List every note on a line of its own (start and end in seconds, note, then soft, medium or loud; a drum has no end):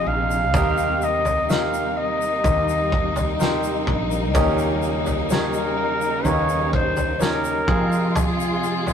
0.00 4.31 C3 medium
0.00 0.50 F3 medium
0.00 0.50 G#3 medium
0.00 0.54 C4 medium
0.00 0.50 D#4 medium
0.00 0.55 D#4 medium
0.00 0.55 F4 medium
0.00 0.55 G#4 medium
0.00 0.49 D#5 medium
0.00 0.55 F5 medium
0.06 0.54 A#1 medium
0.06 1.05 F5 loud
0.31 shaker soft
0.54 2.40 D#2 medium
0.54 1.93 D#3 medium
0.54 7.65 G3 medium
0.54 7.64 A#3 medium
0.54 1.44 C4 medium
0.54 7.64 D#4 medium
0.54 1.45 D#4 medium
0.54 1.44 G4 medium
0.54 1.45 A#4 medium
0.54 1.44 D#5 loud
0.54 kick loud
0.54 floor tom loud
0.54 shaker medium
0.78 shaker medium
1.02 1.52 D#5 loud
1.02 shaker soft
1.25 floor tom medium
1.25 shaker soft
1.50 2.40 C4 medium
1.50 2.40 D#4 medium
1.50 2.40 G4 medium
1.50 2.40 A#4 medium
1.50 2.40 D#5 medium
1.50 1.99 F5 loud
1.50 snare loud
1.50 shaker medium
1.74 shaker medium
1.97 3.87 D#5 loud
2.22 shaker soft
2.44 3.83 D#2 loud
2.44 3.34 C4 medium
2.44 3.34 D#4 medium
2.44 3.34 G4 medium
2.44 3.34 A#4 medium
2.44 3.34 D#5 medium
2.44 kick medium
2.44 floor tom medium
2.44 shaker medium
2.69 shaker medium
2.92 kick medium
3.16 floor tom medium
3.16 shaker soft
3.39 4.30 C4 medium
3.39 4.30 D#4 medium
3.39 4.30 G4 medium
3.39 4.30 A#4 medium
3.39 4.30 C5 loud
3.39 snare loud
3.39 shaker medium
3.63 shaker medium
3.87 4.35 A#1 loud
3.87 kick medium
4.11 shaker medium
4.34 6.21 D#2 loud
4.34 5.73 A#2 medium
4.34 7.64 C#3 medium
4.34 5.25 C#4 loud
4.34 5.25 D#4 loud
4.34 5.25 G4 loud
4.34 5.25 A#4 loud
4.34 5.25 D#5 loud
4.34 kick loud
4.34 floor tom loud
4.34 shaker medium
4.58 shaker medium
4.82 shaker soft
5.06 floor tom medium
5.06 shaker soft
5.30 6.20 C#4 medium
5.30 6.21 D#4 medium
5.30 6.21 G4 medium
5.30 6.21 A#4 medium
5.30 6.27 A#4 loud
5.30 6.21 C#5 medium
5.30 snare loud
5.30 shaker medium
5.53 shaker medium
6.01 shaker soft
6.25 7.64 D#2 loud
6.25 7.15 C#4 medium
6.25 7.15 D#4 medium
6.25 7.15 G4 medium
6.25 7.16 A#4 medium
6.25 6.32 B4 medium
6.25 6.73 C#5 loud
6.25 floor tom medium
6.25 shaker medium
6.32 7.19 D#5 medium
6.49 shaker medium
6.73 7.23 C5 loud
6.73 kick medium
6.97 floor tom medium
6.97 shaker soft
7.19 7.67 C#4 medium
7.19 7.67 D#4 medium
7.19 7.68 G4 medium
7.19 7.68 A#4 medium
7.19 8.17 A#4 loud
7.19 7.68 C#5 medium
7.19 snare loud
7.19 shaker medium
7.44 shaker medium
7.67 8.93 F2 loud
7.67 8.93 C3 medium
7.67 8.93 F3 medium
7.67 8.93 G#3 medium
7.67 8.93 C4 medium
7.67 8.93 F4 medium
7.67 8.93 G#4 medium
7.67 kick loud
7.92 shaker medium
8.16 8.93 G#4 medium
8.16 floor tom loud
8.16 shaker medium
8.40 shaker medium
8.64 shaker medium
8.87 floor tom medium
8.87 shaker soft